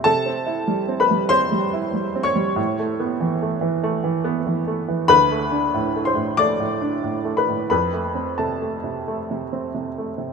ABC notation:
X:1
M:4/4
L:1/8
Q:1/4=95
K:C
V:1 name="Upright piano"
[Aa]3 [Bb] [cc']3 [_d_d']- | [_d_d']8 | [Bb]3 [cc'] [dd']3 [Bb] | [Bb]2 [Aa]4 z2 |]
V:2 name="Upright piano" clef=bass
(3C, C E (3G, C G, (3C G, E (3G, C G, | (3A,, A, B, (3E, A, E, (3A, E, B, (3E, A, E, | (3D,, A, D (3A,, A, A,, (3A, A,, D (3A,, A, A,, | (3F,, A, C (3C, A, C, (3A, C, C (3C, A, C, |]